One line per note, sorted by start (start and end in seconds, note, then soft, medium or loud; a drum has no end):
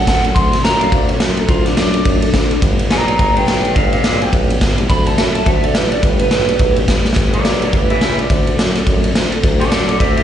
0.00 0.23 F#5 loud
0.07 0.23 D2 medium
0.07 0.24 D3 medium
0.07 0.24 F#3 medium
0.07 0.25 C4 loud
0.07 0.24 D4 loud
0.07 0.22 A4 loud
0.07 kick medium
0.07 snare loud
0.07 ride loud
0.23 0.35 F#2 medium
0.23 0.36 C4 soft
0.23 0.36 D4 medium
0.23 0.35 A4 medium
0.23 ride medium
0.35 0.62 D2 medium
0.35 0.53 D3 medium
0.35 0.53 F#3 medium
0.35 0.53 C4 medium
0.35 0.53 D4 medium
0.35 0.51 A4 medium
0.35 0.63 C6 loud
0.35 kick loud
0.35 ride medium
0.52 0.64 C4 medium
0.52 0.65 D4 medium
0.52 0.64 A4 medium
0.52 snare soft
0.52 ride medium
0.64 0.90 F#2 loud
0.64 0.81 D3 medium
0.64 0.82 F#3 medium
0.64 0.82 C4 medium
0.64 0.81 D4 loud
0.64 0.79 A4 medium
0.64 0.80 A#5 medium
0.64 snare loud
0.64 ride medium
0.80 0.92 C4 soft
0.80 0.93 D4 medium
0.80 0.92 A4 medium
0.80 0.93 F5 loud
0.80 ride medium
0.92 1.18 D2 loud
0.92 1.09 F#3 medium
0.92 1.10 C4 medium
0.92 1.10 D4 medium
0.92 1.08 A4 medium
0.92 1.09 D5 loud
0.92 kick loud
0.92 ride medium
1.09 1.20 C4 soft
1.09 1.21 D4 medium
1.09 1.21 A4 medium
1.09 1.20 C#5 loud
1.09 ride medium
1.20 1.47 F#2 medium
1.20 1.37 D3 medium
1.20 1.38 F#3 medium
1.20 1.38 C4 loud
1.20 1.38 D4 medium
1.20 1.36 A4 medium
1.20 1.38 C5 loud
1.20 snare loud
1.20 ride medium
1.37 1.49 C4 soft
1.37 1.49 D4 soft
1.37 1.49 A4 medium
1.37 1.49 A#4 loud
1.37 ride medium
1.48 1.75 D2 medium
1.48 1.66 D3 medium
1.48 1.66 F#3 medium
1.48 1.67 C4 medium
1.48 1.66 D4 medium
1.48 1.65 F4 loud
1.48 1.65 A4 medium
1.48 kick loud
1.48 ride medium
1.65 1.78 C4 soft
1.65 1.75 D4 medium
1.65 1.78 D4 medium
1.65 1.77 A4 medium
1.65 snare soft
1.65 ride medium
1.76 2.04 F#2 medium
1.76 1.94 D3 medium
1.76 1.95 F#3 medium
1.76 1.95 C4 medium
1.76 2.60 D4 loud
1.76 1.95 D4 medium
1.76 1.93 A4 medium
1.76 snare loud
1.76 ride medium
1.94 2.05 C4 soft
1.94 2.06 D4 soft
1.94 2.06 A4 medium
1.94 ride medium
2.05 2.32 F#2 loud
2.05 2.22 F#3 medium
2.05 2.23 C4 medium
2.05 2.23 D4 medium
2.05 2.21 A4 medium
2.05 kick loud
2.05 ride medium
2.22 2.34 C4 medium
2.22 2.35 D4 medium
2.22 2.34 A4 medium
2.22 ride medium
2.34 2.50 D2 medium
2.34 2.51 D3 medium
2.34 2.51 F#3 loud
2.34 2.51 C4 loud
2.34 2.50 D4 loud
2.34 2.48 A4 loud
2.34 kick medium
2.34 snare loud
2.34 ride medium
2.50 2.63 C4 medium
2.50 2.63 D4 medium
2.50 2.62 A4 medium
2.50 ride medium
2.62 2.89 G1 loud
2.62 2.79 G2 medium
2.62 2.80 D3 medium
2.62 2.80 G3 medium
2.62 2.80 B3 medium
2.62 2.79 D4 medium
2.62 2.77 G4 loud
2.62 kick loud
2.62 ride loud
2.79 2.90 G3 soft
2.79 2.91 B3 medium
2.79 2.91 D4 medium
2.79 2.91 G4 medium
2.79 ride medium
2.90 3.17 B1 medium
2.90 3.08 G2 medium
2.90 3.08 D3 medium
2.90 3.08 G3 medium
2.90 3.08 B3 medium
2.90 3.08 D4 medium
2.90 3.06 G4 medium
2.90 3.06 D5 medium
2.90 3.06 A#5 loud
2.90 snare loud
2.90 ride medium
3.07 3.19 B3 medium
3.07 3.20 D4 medium
3.07 3.19 G4 medium
3.07 3.18 D5 loud
3.07 3.19 A#5 loud
3.07 ride medium
3.11 3.17 G3 soft
3.18 3.46 G1 loud
3.18 3.36 G3 medium
3.18 3.37 B3 medium
3.18 3.36 D4 medium
3.18 3.34 G4 medium
3.18 3.35 D5 medium
3.18 3.36 A#5 loud
3.18 kick loud
3.18 ride medium
3.36 3.47 G3 soft
3.36 3.47 B3 soft
3.36 3.48 D4 medium
3.36 3.47 G4 medium
3.36 3.46 B4 loud
3.36 3.47 G5 loud
3.36 ride medium
3.46 3.74 B1 loud
3.46 3.64 G2 medium
3.46 3.64 D3 medium
3.46 3.65 G3 medium
3.46 3.64 B3 medium
3.46 3.63 D4 medium
3.46 3.62 G4 loud
3.46 3.62 B4 medium
3.46 3.63 G5 loud
3.46 snare loud
3.46 ride medium
3.63 3.75 G3 soft
3.63 3.76 B3 soft
3.63 3.76 D4 medium
3.63 3.75 G4 medium
3.63 3.75 B4 medium
3.63 3.75 G5 loud
3.63 ride medium
3.74 4.02 G1 loud
3.74 3.93 G2 medium
3.74 3.93 D3 medium
3.74 3.93 G3 medium
3.74 3.93 B3 medium
3.74 3.92 D4 medium
3.74 3.90 G4 medium
3.74 3.91 D5 medium
3.74 3.91 F5 loud
3.74 kick loud
3.74 ride medium
3.92 4.04 G3 soft
3.92 4.04 B3 soft
3.92 4.04 D4 medium
3.92 4.04 G4 medium
3.92 4.03 D5 medium
3.92 4.03 F5 medium
3.92 ride medium
4.03 4.32 B1 loud
4.03 4.21 G2 medium
4.03 4.21 D3 medium
4.03 4.22 G3 medium
4.03 4.22 B3 medium
4.03 4.21 D4 medium
4.03 4.20 G4 medium
4.03 4.20 D5 medium
4.03 4.22 F5 medium
4.03 snare loud
4.03 ride medium
4.21 4.31 G3 soft
4.21 4.32 B3 medium
4.21 4.33 D4 medium
4.21 4.33 G4 medium
4.21 4.33 G5 loud
4.21 ride medium
4.32 4.59 B1 loud
4.32 4.49 G3 medium
4.32 4.50 B3 medium
4.32 4.49 D4 medium
4.32 4.48 G4 medium
4.32 kick loud
4.32 ride medium
4.49 4.60 G3 medium
4.49 4.61 B3 medium
4.49 4.62 D4 medium
4.49 4.61 G4 medium
4.49 ride medium
4.61 4.77 G1 loud
4.61 4.78 G2 loud
4.61 4.78 D3 loud
4.61 4.78 G3 loud
4.61 4.78 B3 loud
4.61 4.77 D4 loud
4.61 4.76 G4 loud
4.61 kick medium
4.61 snare loud
4.61 ride medium
4.77 4.89 C2 medium
4.77 4.89 G3 medium
4.77 4.89 B3 medium
4.77 4.89 D4 medium
4.77 4.89 G4 medium
4.77 ride medium
4.88 5.16 D2 loud
4.88 5.06 D3 medium
4.88 5.06 F#3 medium
4.88 5.07 C4 medium
4.88 5.07 D4 medium
4.88 5.05 A4 medium
4.88 5.06 B5 loud
4.88 kick loud
4.88 ride medium
5.06 5.18 C4 medium
5.06 5.19 D4 medium
5.06 5.18 A4 medium
5.06 5.18 A5 loud
5.06 ride medium
5.18 5.45 F#2 loud
5.18 5.35 D3 medium
5.18 5.35 F#3 medium
5.18 5.36 C4 medium
5.18 5.35 D4 loud
5.18 5.33 A4 medium
5.18 5.34 E5 loud
5.18 snare loud
5.18 ride loud
5.35 5.46 C4 soft
5.35 5.47 D4 medium
5.35 5.46 A4 medium
5.35 5.46 A5 loud
5.35 ride medium
5.46 5.73 D2 loud
5.46 5.63 F#3 medium
5.46 5.64 C4 medium
5.46 5.64 D4 medium
5.46 5.62 A4 medium
5.46 5.63 E5 loud
5.46 kick loud
5.46 ride medium
5.63 5.75 C4 soft
5.63 5.75 D4 medium
5.63 5.75 A4 medium
5.63 5.75 D5 loud
5.63 ride medium
5.75 6.02 A1 loud
5.75 5.92 D3 medium
5.75 5.92 F#3 medium
5.75 5.92 C4 loud
5.75 5.92 D4 loud
5.75 5.90 A4 loud
5.75 5.91 B4 loud
5.75 snare loud
5.75 ride medium
5.91 6.04 D4 medium
5.91 6.03 A4 medium
5.91 6.03 D5 medium
5.91 ride medium
5.95 6.04 C4 soft
6.03 6.29 G1 loud
6.03 6.20 G2 medium
6.03 6.20 D3 medium
6.03 6.20 G3 medium
6.03 6.21 B3 medium
6.03 6.20 D4 medium
6.03 6.19 G4 medium
6.03 6.20 B4 loud
6.03 kick loud
6.03 ride medium
6.19 6.32 B3 medium
6.19 6.32 D4 medium
6.19 6.32 G4 medium
6.19 7.03 B4 loud
6.19 ride medium
6.23 6.32 G3 medium
6.31 6.58 B1 loud
6.31 6.49 G2 medium
6.31 6.49 D3 medium
6.31 6.49 G3 medium
6.31 6.49 B3 medium
6.31 6.49 D4 medium
6.31 6.48 G4 loud
6.31 snare loud
6.31 ride medium
6.48 6.59 G3 soft
6.48 6.60 B3 medium
6.48 6.61 D4 medium
6.48 6.60 G4 medium
6.48 ride medium
6.59 6.86 B1 loud
6.59 6.77 G3 medium
6.59 6.78 B3 medium
6.59 6.77 D4 medium
6.59 kick loud
6.59 ride medium
6.64 6.76 G4 medium
6.76 6.89 G3 soft
6.76 6.89 B3 medium
6.76 6.89 D4 medium
6.76 6.88 G4 medium
6.76 ride medium
6.88 7.04 G1 medium
6.88 7.05 G2 loud
6.88 7.06 D3 loud
6.88 7.06 G3 loud
6.88 7.06 B3 loud
6.88 7.05 D4 loud
6.88 7.04 G4 loud
6.88 kick medium
6.88 snare loud
6.88 ride medium
7.05 7.16 B1 medium
7.05 7.16 G3 medium
7.05 7.17 B3 medium
7.05 7.17 D4 medium
7.05 7.17 G4 medium
7.05 snare medium
7.13 7.43 G1 medium
7.13 7.33 G2 medium
7.13 kick loud
7.13 snare loud
7.13 ride medium
7.17 7.34 D3 medium
7.17 7.34 G3 medium
7.17 7.34 B3 medium
7.17 7.33 D4 medium
7.17 7.32 G4 loud
7.33 7.45 G3 medium
7.33 7.45 B3 soft
7.33 7.45 D4 medium
7.33 7.45 G4 medium
7.33 7.45 A#4 medium
7.33 7.45 D5 medium
7.33 ride medium
7.45 7.71 B1 loud
7.45 7.62 G2 medium
7.45 7.62 D3 medium
7.45 7.62 G3 medium
7.45 7.62 B3 medium
7.45 7.62 D4 medium
7.45 7.61 G4 loud
7.45 7.61 A#4 medium
7.45 7.62 D5 medium
7.45 snare loud
7.45 ride medium
7.62 7.72 G3 soft
7.62 7.73 B3 soft
7.62 7.74 D4 medium
7.62 7.73 G4 medium
7.62 7.73 A#4 medium
7.62 7.73 D5 medium
7.62 ride medium
7.73 8.00 G1 loud
7.73 7.90 G3 medium
7.73 7.91 B3 medium
7.73 7.91 D4 medium
7.73 7.89 G4 medium
7.73 7.89 B4 medium
7.73 7.90 E5 loud
7.73 kick loud
7.73 ride medium
7.90 8.02 G3 soft
7.90 8.02 B3 soft
7.90 8.03 D4 medium
7.90 8.02 G4 medium
7.90 8.01 B4 medium
7.90 8.02 E5 loud
7.90 ride medium
8.01 8.28 C#2 medium
8.01 8.19 G2 medium
8.01 8.19 D3 medium
8.01 8.19 G3 medium
8.01 8.19 B3 medium
8.01 8.18 D4 medium
8.01 8.17 G4 medium
8.01 8.18 B4 medium
8.01 8.19 E5 medium
8.01 snare loud
8.01 ride medium
8.18 8.31 G3 soft
8.18 8.31 B3 medium
8.18 8.30 D4 medium
8.18 8.30 G4 medium
8.18 9.02 D5 medium
8.18 ride medium
8.30 8.56 D2 loud
8.30 8.47 D3 medium
8.30 8.47 F#3 medium
8.30 8.48 C4 medium
8.30 8.47 D4 medium
8.30 8.45 A4 medium
8.30 kick loud
8.30 ride medium
8.46 8.59 C4 soft
8.46 8.59 D4 soft
8.46 8.58 A4 medium
8.46 ride medium
8.59 8.85 F#2 loud
8.59 8.75 D3 medium
8.59 8.76 F#3 loud
8.59 8.76 C4 medium
8.59 8.76 D4 medium
8.59 8.74 A4 loud
8.59 snare loud
8.59 ride medium
8.75 8.86 C4 medium
8.75 8.88 D4 medium
8.75 8.87 A4 medium
8.75 snare soft
8.75 ride medium
8.87 9.13 F#2 loud
8.87 9.04 F#3 medium
8.87 9.04 C4 medium
8.87 9.04 D4 medium
8.87 9.03 A4 medium
8.87 kick loud
8.87 ride medium
9.04 9.16 C4 soft
9.04 9.16 D4 medium
9.04 9.15 A4 medium
9.04 ride medium
9.15 9.31 D2 medium
9.15 9.32 D3 medium
9.15 9.33 F#3 medium
9.15 9.33 C4 loud
9.15 9.33 D4 loud
9.15 9.31 A4 medium
9.15 snare loud
9.15 ride loud
9.32 9.43 C4 medium
9.32 9.44 D4 medium
9.32 9.44 A4 medium
9.32 ride medium
9.43 9.70 D2 loud
9.43 9.60 D3 medium
9.43 9.61 F#3 loud
9.43 9.61 C4 loud
9.43 9.61 D4 loud
9.43 9.59 A4 loud
9.43 kick loud
9.43 ride medium
9.60 9.72 D4 soft
9.60 9.70 A4 medium
9.60 9.72 A4 medium
9.60 9.71 D5 medium
9.60 ride medium
9.64 9.72 C4 soft
9.71 9.98 F#2 medium
9.71 9.89 D3 medium
9.71 9.89 F#3 medium
9.71 9.89 C4 medium
9.71 9.89 D4 medium
9.71 9.86 A4 medium
9.71 9.87 A4 loud
9.71 9.88 D5 medium
9.71 snare loud
9.71 ride loud
9.88 10.00 C4 soft
9.88 10.01 D4 medium
9.88 9.99 A4 medium
9.88 10.00 A4 medium
9.88 10.00 D5 loud
9.88 ride medium
9.99 10.23 D2 loud
9.99 10.17 F#3 medium
9.99 10.18 C4 medium
9.99 10.18 D4 medium
9.99 10.15 C5 medium
9.99 10.16 E5 loud
9.99 kick loud
9.99 ride medium
10.03 10.16 A4 medium
10.16 10.23 D4 medium
10.16 10.23 A4 medium
10.16 10.23 C5 medium
10.16 10.23 E5 loud
10.16 ride medium
10.20 10.23 C4 soft